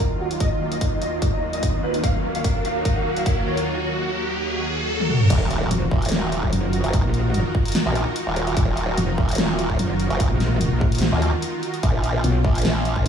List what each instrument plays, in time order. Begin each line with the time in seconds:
Already playing: supersaw synth D#2 D#3 F#3 A#3 F4, riser
0.10 grand piano D#4
0.20 grand piano F#4
0.31 grand piano D#4, closed hi-hat
0.40 grand piano D#5, kick, closed hi-hat
0.51 grand piano D#4
0.61 grand piano D#4
0.72 grand piano D#5, closed hi-hat
0.81 grand piano D#4, kick, closed hi-hat
0.92 grand piano D#4
1.01 grand piano D#5, closed hi-hat
1.12 grand piano D#4
1.22 grand piano D#4, kick, closed hi-hat
1.33 grand piano D#5
1.42 grand piano D#4
1.53 grand piano D#5, closed hi-hat
1.63 grand piano D#4, kick, closed hi-hat
1.74 grand piano D#4
1.83 grand piano B4
1.94 grand piano D#4, closed hi-hat
2.03 supersaw synth F#4, grand piano F5, kick, closed hi-hat
2.15 grand piano A#4
2.24 grand piano A#4
2.35 grand piano F5, closed hi-hat
2.44 grand piano A#4, kick, closed hi-hat
2.55 grand piano A#4
2.65 grand piano F5, closed hi-hat
2.76 grand piano A#4
2.85 grand piano A#4, kick, closed hi-hat
2.96 grand piano F5
3.06 grand piano A#4
3.17 grand piano F5, closed hi-hat
3.26 grand piano A#4, kick, closed hi-hat
3.37 grand piano A#4
3.46 grand piano C#5
3.57 grand piano A#4, closed hi-hat
5.00 high tom
5.10 mid tom
5.21 mid tom
5.30 wobble bass D#1, supersaw synth D#3 D#4 F4 F#4 A#4, kick, closed hi-hat, crash, impact
5.51 closed hi-hat
5.71 wobble bass F1, closed hi-hat
5.91 wobble bass D#1, kick
6.02 closed hi-hat
6.05 closed hi-hat
6.09 snare, closed hi-hat
6.12 closed hi-hat
6.32 closed hi-hat
6.43 kick
6.53 wobble bass F#1, closed hi-hat
6.73 closed hi-hat
6.84 wobble bass F#1, closed hi-hat
6.93 kick, closed hi-hat
7.04 wobble bass A#1
7.14 closed hi-hat
7.34 closed hi-hat
7.55 kick
7.66 closed hi-hat
7.68 closed hi-hat
7.72 snare, closed hi-hat
7.75 closed hi-hat
7.86 wobble bass A#1
7.95 closed hi-hat
8.16 closed hi-hat
8.27 wobble bass D#1
8.36 closed hi-hat
8.47 closed hi-hat
8.57 wobble bass D#1, kick, closed hi-hat
8.77 closed hi-hat
8.98 wobble bass F1, closed hi-hat
9.18 wobble bass D#1, kick
9.29 closed hi-hat
9.31 closed hi-hat
9.35 snare, closed hi-hat
9.38 closed hi-hat
9.59 closed hi-hat
9.70 kick
9.79 wobble bass F#1, closed hi-hat
10.00 closed hi-hat
10.10 wobble bass F#1, closed hi-hat
10.20 kick, closed hi-hat
10.31 wobble bass A#1
10.40 snare, closed hi-hat
10.61 closed hi-hat
10.72 wobble bass A#1
10.81 kick
10.92 closed hi-hat
10.95 closed hi-hat
10.98 snare, closed hi-hat
11.02 closed hi-hat
11.12 wobble bass D#2
11.22 closed hi-hat
11.42 closed hi-hat
11.63 closed hi-hat
11.74 closed hi-hat
11.83 wobble bass A#1, supersaw synth A#3 C#4, kick, closed hi-hat
12.04 closed hi-hat
12.24 wobble bass B1, closed hi-hat
12.44 wobble bass A#1, kick
12.55 closed hi-hat
12.58 closed hi-hat
12.62 snare, closed hi-hat
12.65 closed hi-hat
12.85 closed hi-hat
12.96 kick